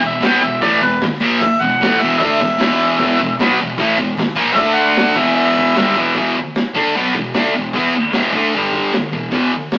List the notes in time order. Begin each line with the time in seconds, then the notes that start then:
0.02 E2 B2 E5, shaker
0.21 B2 F#3 B3, snare, open hi-hat, shaker
0.26 G5
0.41 E2 B2 E5, shaker
0.52 shaker
0.62 A2 E3 A3 D5, kick, open hi-hat, shaker
0.81 E2 B2 B4, kick, snare, shaker
0.91 shaker
1.00 muted distorted electric guitar stroke, snare, open hi-hat, shaker
1.13 snare
1.20 A#2 F3 A#3, shaker
1.40 E5, muted distorted electric guitar stroke, kick, open hi-hat, shaker
1.59 E2 B2 F#5, shaker
1.79 A2 E3 A3, snare, open hi-hat, shaker
1.99 E2 B2 E5, shaker
2.04 E3
2.19 D3 A3 D4 E5, kick, open hi-hat, shaker
2.39 E2 B2, kick, shaker
2.50 shaker
2.59 E2 B2 E3, snare, open hi-hat, shaker
2.72 snare
2.79 shaker
2.98 E2 B2 E3, kick, open hi-hat, shaker
3.18 E2 B2, shaker
3.38 B2 F#3 B3, snare, open hi-hat, shaker
3.58 E2 B2, shaker
3.68 shaker
3.77 A2 E3 A3, kick, open hi-hat, shaker
3.97 E2 B2, kick, shaker
4.07 shaker
4.16 muted distorted electric guitar stroke, snare, open hi-hat, shaker
4.35 A#2 F3 A#3, shaker
4.55 D3 A3 D4 E5, kick, open hi-hat, shaker
4.75 F#5, shaker
4.95 snare, open hi-hat, shaker
5.14 E2 B2 E3 E5, kick, crash, shaker
5.25 shaker
5.35 E5, shaker
5.54 kick, shaker
5.75 G2 D3 G3, snare, open hi-hat, shaker
5.95 E2 B2 E3, shaker
6.05 shaker
6.15 E2 B2 E3, kick, open hi-hat
6.37 muted distorted electric guitar stroke
6.55 snare, open hi-hat
6.74 D3 A3 D4, kick
6.95 B2 F#3 B3, open hi-hat
7.14 E2 B2, kick
7.33 D3 A3 D4, snare, open hi-hat
7.54 E2 B2
7.72 E3 B3 E4, kick, open hi-hat
7.94 muted distorted electric guitar stroke
8.12 E2 B2 E3, snare, open hi-hat
8.33 D3 A3 D4, kick
8.54 G2 D3 G3, open hi-hat
8.73 kick
8.93 muted distorted electric guitar stroke, snare, open hi-hat
9.12 E2 B2
9.31 E2 B2 E3, kick, open hi-hat
9.52 muted distorted electric guitar stroke
9.71 snare, open hi-hat